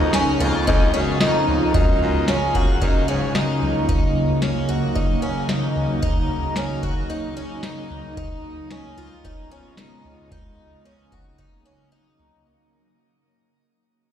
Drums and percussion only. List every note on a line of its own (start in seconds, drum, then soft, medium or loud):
0.00 floor tom medium
0.13 snare medium
0.40 floor tom medium
0.67 kick medium
0.67 floor tom medium
1.21 snare loud
1.48 floor tom medium
1.74 kick medium
1.74 floor tom loud
2.14 floor tom medium
2.28 snare medium
2.54 kick medium
2.54 floor tom medium
2.81 kick medium
2.81 floor tom medium
3.35 snare loud
3.62 floor tom medium
3.88 kick loud
3.88 floor tom medium
4.29 floor tom medium
4.42 snare medium
4.69 floor tom medium
4.96 kick medium
4.96 floor tom medium
5.49 snare loud
5.76 floor tom medium
6.03 kick medium
6.03 floor tom medium
6.42 floor tom medium
6.56 snare medium
6.83 kick medium
6.83 floor tom medium
7.10 floor tom medium
7.63 snare loud
7.90 floor tom medium
8.17 kick medium
8.17 floor tom loud
8.57 floor tom medium
8.70 snare medium
8.97 floor tom medium
9.24 kick medium
9.24 floor tom medium
9.77 snare loud
10.05 floor tom medium
10.31 kick medium
10.31 floor tom loud
10.71 floor tom soft
11.11 kick medium
11.11 floor tom medium
11.38 kick medium
11.38 floor tom medium
12.19 floor tom medium